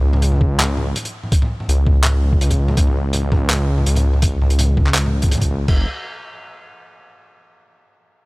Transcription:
Already playing: C#2
0.13 mid tom
0.22 closed hi-hat
0.32 mid tom
0.34 mid tom
0.36 mid tom
0.38 kick, mid tom
0.59 clap, closed hi-hat, mid tom
0.77 mid tom
0.95 closed hi-hat, mid tom
1.05 closed hi-hat
1.23 mid tom
1.32 kick, closed hi-hat
1.42 mid tom
1.60 mid tom
1.68 C#2, closed hi-hat
1.87 kick, mid tom
2.04 clap, closed hi-hat, mid tom
2.22 mid tom
2.33 kick
2.41 C#2, closed hi-hat
2.50 kick, closed hi-hat, mid tom
2.68 mid tom
2.77 C#2, kick, closed hi-hat
2.87 mid tom
3.13 closed hi-hat, mid tom
3.32 kick, mid tom
3.50 clap, closed hi-hat, mid tom
3.78 mid tom
3.86 C#2, closed hi-hat
3.96 closed hi-hat, mid tom
4.14 mid tom
4.22 kick, closed hi-hat
4.41 C#2, mid tom
4.50 closed hi-hat
4.59 closed hi-hat, mid tom
4.77 kick, mid tom
4.87 clap
4.94 clap, closed hi-hat
5.06 mid tom
5.22 kick, closed hi-hat, mid tom
5.25 mid tom
5.29 mid tom
5.31 closed hi-hat, mid tom
5.35 mid tom
5.38 mid tom
5.41 kick, closed hi-hat, mid tom
5.50 C#2
5.68 F#1, kick, crash

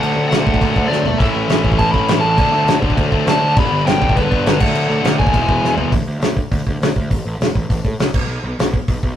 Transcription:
Already playing: D3 F#3 A3 D4
0.00 D2 F#5, crash
0.17 D2
0.29 D2 D3 F#5, crash
0.33 A3 D4, snare
0.46 D2, kick
0.54 kick
0.61 D2 D3 F#3 A3 D4, kick, crash
0.75 D2 D3 F#3 A3 D4, kick
0.88 D2 D5
0.92 snare
1.03 B1, floor tom
1.18 A1 A2 E3 A3 C#4 E4 E5, kick, crash
1.35 A1
1.48 A1, snare, crash
1.63 A1 A2 E3 A3, kick
1.72 kick
1.78 A1 A5, kick, crash
1.91 A1 A2 E3 A3 C#4 E4 B5, kick
2.08 A1 A2 E3 A3 C#4 E4, snare, crash
2.20 A1 A5
2.37 D2 D3 F#3 A3 D4, kick, crash
2.52 D2
2.65 D2, snare, crash
2.81 D2 D3 A3 D4, kick
2.90 kick
2.97 D2, kick, crash
3.12 D2 D3 F#3 A3 D4, kick
3.26 D2 D3 F#3 A3 D4, snare, crash
3.31 A5
3.41 D2
3.56 G1 G2 D3 G3 B3 D4 B5, kick, crash
3.72 G1
3.86 G1 G5, snare, crash
4.01 G1 G2 D3 G3, kick
4.09 kick
4.16 G1 B4, kick, crash
4.30 G1 G2 D3 G3 B3 D4, kick
4.46 G1 G2 D3 G3 B3 D4, snare, crash
4.60 D2 D3 F#3 A3 D4 F#5, kick, crash
4.75 D2, crash
4.89 D2
5.03 D2 D3, snare, crash
5.07 A3 D4
5.19 D2 G#5, kick
5.27 kick
5.31 E1 E2 B2 E3 G#3 B3 E4, kick, crash
5.36 E3
5.48 E1, kick
5.63 E1, snare
5.77 E1 B2 E3, floor tom
5.81 E2
5.91 D2, kick, open hi-hat
6.07 D2
6.20 D2, snare, open hi-hat
6.37 kick
6.51 D2, kick, open hi-hat
6.67 D2, kick
6.81 D2, snare, open hi-hat
6.96 D2, kick
7.10 A1, kick, open hi-hat
7.25 A1
7.38 E1, snare, open hi-hat
7.55 A1, kick
7.69 A1, kick, open hi-hat
7.85 A2, kick
8.00 C#2, snare, open hi-hat
8.14 B1, kick, crash
8.27 B1
8.44 B1
8.59 B1, snare, open hi-hat
8.74 kick
8.88 B1, kick, open hi-hat
9.03 B1, kick

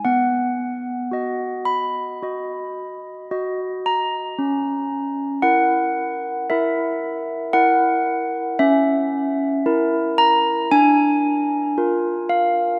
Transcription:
0.05 B3 F#5
1.11 F#4 D#5
1.65 B5
2.23 F#4 D#5
3.31 F#4 D#5
3.86 A#5
4.39 C#4
5.42 E4 A#4 F#5
6.50 E4 A#4 E5
7.53 E4 A#4 F#5
8.59 C#4 E5
9.66 E4 A#4
10.18 A#5
10.71 D4 G#5
11.78 F4 A#4
12.29 F5

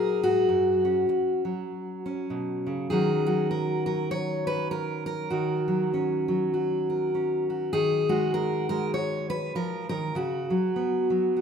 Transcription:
Already playing: A#2 F#3 D#4 G#4 A#4
0.23 G#2 F#4
0.49 F#2
0.85 C#4
1.09 muted steel-string acoustic guitar stroke
1.45 F#3
2.06 C#4
2.30 B2
2.66 C#3
2.90 D#3 F#3 C#4 F#4 G#4
3.26 F#3 F#4
3.51 A#4
3.86 F#3 A#4
4.11 C#5
4.47 B4
4.71 A#4
5.06 A#4
5.30 D#3 F#4
5.68 F#3
5.94 C#4
6.28 F#3
6.54 F#4
6.90 A#4
7.15 C#4
7.50 F#4
7.73 D#3 G#4
8.09 G#3 F#4
8.34 A#4
8.69 G#3 A#4
8.94 C#5
9.30 B4
9.55 F3 A#4
9.89 D#3 A#4
10.15 C#3 F#4
10.50 F#3
10.76 B3
11.10 F#3
11.37 F#4

